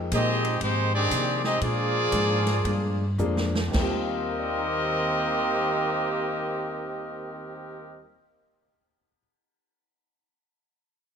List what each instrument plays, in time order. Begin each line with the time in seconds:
Already playing: upright bass F2, grand piano F3 G#3 A#3 D#4 G5
0.12 upright bass A#2, steel-string acoustic guitar F3 A#3 D#4 G#4, trombone section G#3 C4 D#4, trumpet section C4 G4 G#4 D#5, kick, hi-hat pedal, ride
0.45 ride
0.60 upright bass G#2, trombone section D#3 G#3 C4, steel-string acoustic guitar F3 A#3 D#4 G#4, trumpet section G4, kick, ride
0.64 trumpet section G#3 D#4 C5
0.93 trombone section D#3 G#3 D4, trumpet section C4 G4 G#4 D5
1.10 upright bass C3, steel-string acoustic guitar F3 A#3 D#4 G#4, kick, hi-hat pedal, ride
1.44 trombone section G#3 C4 D#4, trumpet section C4 G4 G#4 D#5, snare
1.60 steel-string acoustic guitar A#2 F3 G#3 D4, upright bass A#2, trombone section F3 D4 G#4, trumpet section A#3 F4 G#4 D5, kick, ride
2.12 upright bass G#2, steel-string acoustic guitar A#2 F3 G#3 D4, kick, hi-hat pedal, ride
2.47 snare, ride
2.64 upright bass G2, steel-string acoustic guitar A#2 F3 G#3 D4, kick, ride
3.18 upright bass F2, steel-string acoustic guitar A#2 F3 G#3 D4, grand piano F3 G#3 A#3 D4 G#4, hi-hat pedal
3.37 snare
3.55 snare
3.68 grand piano D#2 D#3, steel-string acoustic guitar D#3
3.74 upright bass D#2, trombone section D#3 A#3 C4 G4, steel-string acoustic guitar G3, grand piano C4 F4, trumpet section C4 G4 A#4 D#5, kick, snare, crash
3.81 steel-string acoustic guitar C4, grand piano G4
3.90 steel-string acoustic guitar F4
4.32 grand piano A#4
4.39 grand piano D5
4.48 grand piano F5
4.56 grand piano A#5
4.67 grand piano D6
4.78 grand piano F6
4.89 grand piano A#6